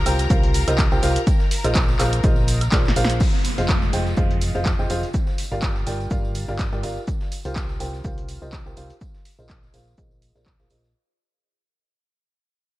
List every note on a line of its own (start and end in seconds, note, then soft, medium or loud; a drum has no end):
0.00 3.22 A#4 medium
0.00 3.22 A#5 medium
0.06 0.28 C2 loud
0.06 0.28 F4 medium
0.06 0.28 G4 medium
0.06 0.28 A#4 medium
0.06 0.28 C5 medium
0.06 0.28 G5 medium
0.06 open hi-hat medium
0.06 tambourine medium
0.06 high woodblock medium
0.06 shaker medium
0.19 snare soft
0.19 closed hi-hat medium
0.19 tambourine soft
0.19 shaker medium
0.30 0.65 C2 loud
0.30 0.64 F4 medium
0.30 0.64 G4 medium
0.30 0.64 A#4 medium
0.30 0.64 C5 medium
0.30 0.64 F5 loud
0.30 kick loud
0.30 closed hi-hat medium
0.30 tambourine medium
0.30 shaker medium
0.30 shaker soft
0.43 closed hi-hat soft
0.54 open hi-hat loud
0.54 tambourine medium
0.54 shaker medium
0.68 0.89 C2 medium
0.68 0.81 F4 medium
0.68 0.81 G4 medium
0.68 0.81 A#4 medium
0.68 0.81 C5 medium
0.68 0.81 D#5 loud
0.68 closed hi-hat medium
0.68 tambourine soft
0.68 high woodblock medium
0.68 shaker soft
0.79 kick loud
0.79 snare loud
0.79 clap loud
0.79 closed hi-hat medium
0.79 tambourine soft
0.79 shaker medium
0.79 shaker soft
0.92 1.01 C2 loud
0.92 1.01 F4 medium
0.92 1.01 G4 medium
0.92 1.01 A#4 medium
0.92 1.01 C5 medium
0.92 1.01 G5 loud
0.92 tambourine soft
1.03 1.16 C2 loud
1.03 1.18 F4 loud
1.03 1.18 G4 medium
1.03 1.18 A#4 medium
1.03 1.18 C5 medium
1.03 1.18 F5 loud
1.03 open hi-hat medium
1.03 tambourine medium
1.03 shaker medium
1.16 closed hi-hat soft
1.16 closed hi-hat medium
1.16 tambourine soft
1.16 shaker soft
1.27 kick loud
1.27 closed hi-hat medium
1.27 tambourine medium
1.27 shaker medium
1.27 shaker soft
1.40 snare soft
1.40 tambourine soft
1.51 open hi-hat medium
1.51 open hi-hat loud
1.51 tambourine medium
1.51 shaker medium
1.64 1.97 A#1 loud
1.64 1.97 F4 medium
1.64 1.97 G#4 medium
1.64 1.97 A#4 medium
1.64 1.97 C5 medium
1.64 1.97 D#5 loud
1.64 closed hi-hat medium
1.64 tambourine soft
1.64 high woodblock medium
1.64 shaker soft
1.75 kick loud
1.75 snare loud
1.75 clap loud
1.75 closed hi-hat medium
1.75 tambourine medium
1.75 shaker medium
1.75 shaker soft
1.88 snare soft
1.88 tambourine soft
2.00 2.22 A#1 loud
2.00 2.21 F4 medium
2.00 2.21 G#4 medium
2.00 2.21 A#4 medium
2.00 2.21 C5 medium
2.00 2.21 F5 medium
2.00 snare soft
2.00 clap medium
2.00 open hi-hat medium
2.00 tambourine medium
2.00 high woodblock medium
2.00 shaker medium
2.13 closed hi-hat medium
2.13 tambourine soft
2.13 shaker soft
2.23 2.70 A#1 loud
2.23 2.58 F4 medium
2.23 2.58 G#4 medium
2.23 2.58 A#4 medium
2.23 2.58 C5 medium
2.23 2.58 D#5 loud
2.23 kick loud
2.23 closed hi-hat medium
2.23 tambourine medium
2.23 shaker medium
2.23 shaker soft
2.36 tambourine soft
2.48 open hi-hat loud
2.48 tambourine medium
2.48 shaker medium
2.61 snare soft
2.61 closed hi-hat medium
2.61 tambourine soft
2.61 high woodblock medium
2.61 shaker soft
2.72 2.94 A#1 loud
2.72 2.87 F4 medium
2.72 2.87 G#4 medium
2.72 2.87 A#4 medium
2.72 2.87 C5 medium
2.72 2.87 D5 medium
2.72 kick loud
2.72 snare loud
2.72 snare medium
2.72 clap loud
2.72 closed hi-hat medium
2.72 tambourine soft
2.72 shaker medium
2.72 shaker soft
2.85 snare medium
2.85 tambourine soft
2.88 snare medium
2.96 3.18 A#1 loud
2.96 3.19 F4 medium
2.96 3.19 G#4 medium
2.96 3.19 A#4 medium
2.96 3.19 C5 medium
2.96 3.19 F5 loud
2.96 open hi-hat medium
2.96 tambourine medium
2.96 shaker medium
3.04 snare loud
3.09 closed hi-hat medium
3.09 tambourine soft
3.09 shaker soft
3.20 kick loud
3.20 crash medium
3.20 tambourine medium
3.20 downlifter medium
3.20 shaker medium
3.34 snare soft
3.34 tambourine soft
3.45 open hi-hat loud
3.45 tambourine medium
3.45 shaker medium
3.58 3.91 F1 medium
3.58 3.90 F4 medium
3.58 3.90 G#4 medium
3.58 3.90 C5 medium
3.58 3.90 D#5 medium
3.58 3.91 F5 medium
3.58 closed hi-hat soft
3.58 tambourine soft
3.69 kick loud
3.69 snare loud
3.69 clap loud
3.69 tambourine medium
3.69 shaker medium
3.82 snare soft
3.82 tambourine soft
3.93 4.15 F1 loud
3.93 4.15 F4 medium
3.93 4.15 G#4 medium
3.93 4.15 C5 medium
3.93 4.15 D#5 medium
3.93 4.15 G5 medium
3.93 open hi-hat medium
3.93 tambourine medium
3.93 shaker medium
4.06 snare soft
4.06 tambourine soft
4.16 4.52 F1 loud
4.16 4.52 F4 medium
4.16 4.52 G#4 medium
4.16 4.52 C5 medium
4.16 4.52 D#5 medium
4.16 4.52 F5 medium
4.16 kick loud
4.16 tambourine medium
4.16 shaker medium
4.31 closed hi-hat soft
4.41 open hi-hat loud
4.41 tambourine medium
4.41 shaker medium
4.55 4.76 F1 medium
4.55 4.68 F4 medium
4.55 4.68 G#4 medium
4.55 4.68 C5 medium
4.55 4.68 D#5 medium
4.55 4.68 F5 loud
4.55 tambourine soft
4.65 kick loud
4.65 snare loud
4.65 clap loud
4.65 tambourine medium
4.65 shaker medium
4.79 4.88 F1 medium
4.79 4.88 F4 medium
4.79 4.88 G#4 medium
4.79 4.88 C5 medium
4.79 4.88 D#5 medium
4.79 4.88 G5 medium
4.79 tambourine soft
4.90 5.03 F1 medium
4.90 5.05 F4 loud
4.90 5.05 G#4 medium
4.90 5.05 C5 medium
4.90 5.05 D#5 medium
4.90 5.05 F5 loud
4.90 open hi-hat medium
4.90 tambourine medium
4.90 shaker medium
5.03 closed hi-hat soft
5.03 tambourine soft
5.13 kick loud
5.13 tambourine medium
5.13 shaker medium
5.27 snare soft
5.27 tambourine soft
5.38 open hi-hat loud
5.38 open hi-hat medium
5.38 tambourine medium
5.52 5.84 G1 medium
5.52 5.84 F4 medium
5.52 5.84 G4 medium
5.52 5.84 A#4 medium
5.52 5.84 D5 medium
5.52 5.84 F5 medium
5.52 tambourine soft
5.62 kick loud
5.62 snare loud
5.62 clap loud
5.62 tambourine medium
5.62 shaker medium
5.76 snare soft
5.76 tambourine soft
5.87 6.09 G1 loud
5.87 6.08 F4 medium
5.87 6.08 G4 medium
5.87 6.08 A#4 medium
5.87 6.08 D5 medium
5.87 6.08 G5 medium
5.87 snare soft
5.87 open hi-hat medium
5.87 tambourine medium
5.87 shaker medium
6.00 tambourine soft
6.10 6.46 G1 loud
6.10 6.45 F4 medium
6.10 6.45 G4 medium
6.10 6.45 A#4 medium
6.10 6.45 D5 medium
6.10 6.45 F5 medium
6.10 kick loud
6.10 tambourine soft
6.10 shaker medium
6.25 tambourine soft
6.35 open hi-hat loud
6.35 tambourine medium
6.35 shaker medium
6.48 6.70 G1 medium
6.48 6.62 F4 medium
6.48 6.62 G4 medium
6.48 6.62 A#4 medium
6.48 6.62 D5 medium
6.48 6.62 F5 medium
6.48 snare soft
6.48 tambourine soft
6.59 kick loud
6.59 snare loud
6.59 clap loud
6.59 tambourine medium
6.59 shaker medium
6.72 6.81 G2 loud
6.72 6.82 F4 medium
6.72 6.82 G4 medium
6.72 6.82 A#4 medium
6.72 6.82 D5 medium
6.72 6.82 G5 medium
6.72 snare soft
6.72 tambourine soft
6.83 6.96 G1 medium
6.83 6.99 F4 medium
6.83 6.99 G4 medium
6.83 6.99 A#4 medium
6.83 6.99 D5 medium
6.83 6.99 F5 loud
6.83 open hi-hat medium
6.83 tambourine medium
6.83 shaker medium
6.97 tambourine soft
7.08 kick loud
7.08 tambourine medium
7.08 shaker medium
7.21 snare soft
7.21 tambourine soft
7.32 open hi-hat loud
7.32 tambourine loud
7.32 shaker medium
7.45 7.78 C2 medium
7.45 7.78 F4 medium
7.45 7.78 G4 medium
7.45 7.78 A#4 medium
7.45 7.78 C5 medium
7.45 7.78 F5 medium
7.45 closed hi-hat soft
7.45 tambourine soft
7.56 kick loud
7.56 snare loud
7.56 clap loud
7.56 tambourine soft
7.56 shaker medium
7.69 snare soft
7.69 tambourine soft
7.80 8.02 C2 medium
7.80 8.02 F4 medium
7.80 8.02 G4 medium
7.80 8.02 A#4 medium
7.80 8.02 C5 medium
7.80 8.02 G5 medium
7.80 open hi-hat medium
7.80 tambourine medium
7.80 shaker medium
7.94 snare soft
7.94 tambourine soft
8.04 8.39 C2 loud
8.04 8.39 F4 medium
8.04 8.39 G4 medium
8.04 8.39 A#4 medium
8.04 8.39 C5 medium
8.04 8.39 F5 medium
8.04 kick loud
8.04 tambourine soft
8.04 shaker medium
8.18 closed hi-hat soft
8.29 open hi-hat loud
8.29 tambourine medium
8.29 shaker medium
8.42 8.63 C2 medium
8.42 8.55 F4 medium
8.42 8.55 G4 medium
8.42 8.55 A#4 medium
8.42 8.55 C5 medium
8.42 8.55 D#5 medium
8.42 tambourine soft
8.53 kick loud
8.53 snare loud
8.53 clap loud
8.53 tambourine medium
8.53 shaker medium
8.66 8.75 C2 medium
8.66 8.75 F4 medium
8.66 8.75 G4 medium
8.66 8.75 A#4 medium
8.66 8.75 C5 medium
8.66 8.75 G5 medium
8.66 tambourine soft
8.77 8.90 C2 medium
8.77 8.92 F4 medium
8.77 8.92 G4 medium
8.77 8.92 A#4 medium
8.77 8.92 C5 medium
8.77 8.92 F5 loud
8.77 open hi-hat medium
8.77 tambourine medium
8.77 shaker medium
8.90 closed hi-hat soft
8.90 tambourine soft
9.01 kick loud
9.01 tambourine medium
9.01 shaker medium
9.14 snare soft
9.14 tambourine soft
9.25 open hi-hat loud
9.25 open hi-hat medium
9.25 tambourine medium
9.39 9.72 A#1 medium
9.39 9.71 F4 medium
9.39 9.71 G#4 medium
9.39 9.71 A#4 medium
9.39 9.71 C5 medium
9.39 9.71 D#5 medium
9.39 tambourine soft
9.50 kick loud
9.50 snare loud
9.50 clap loud
9.50 tambourine medium
9.50 shaker medium
9.63 snare soft
9.63 tambourine soft
9.74 9.96 A#1 medium
9.74 9.95 F4 medium
9.74 9.95 G#4 medium
9.74 9.95 A#4 medium
9.74 9.95 C5 medium
9.74 9.95 F5 medium
9.74 snare soft
9.74 open hi-hat medium
9.74 tambourine medium
9.74 shaker medium
9.87 tambourine soft
9.98 10.33 A#1 medium
9.98 10.32 F4 medium
9.98 10.32 G#4 medium
9.98 10.32 A#4 medium
9.98 10.32 C5 medium
9.98 10.32 D#5 medium
9.98 kick loud
9.98 tambourine soft
9.98 shaker medium
10.11 tambourine soft
10.22 open hi-hat loud
10.22 tambourine medium
10.22 shaker medium
10.35 10.57 A#1 medium
10.35 10.49 F4 medium
10.35 10.49 G#4 medium
10.35 10.49 A#4 medium
10.35 10.49 C5 medium
10.35 10.49 D5 medium
10.35 snare soft
10.35 tambourine soft
10.46 kick loud
10.46 snare loud
10.46 clap loud
10.46 shaker medium
10.59 10.68 A#1 medium
10.59 10.69 F4 medium
10.59 10.69 G#4 medium
10.59 10.69 A#4 medium
10.59 10.69 C5 medium
10.59 10.69 F5 medium
10.59 snare soft
10.59 tambourine soft
10.70 10.93 A#1 medium
10.70 10.86 F4 medium
10.70 10.86 G#4 medium
10.70 10.86 A#4 medium
10.70 10.86 C5 medium
10.70 10.86 D#5 loud
10.70 open hi-hat medium
10.70 tambourine medium
10.70 shaker medium
10.84 snare soft
10.84 tambourine soft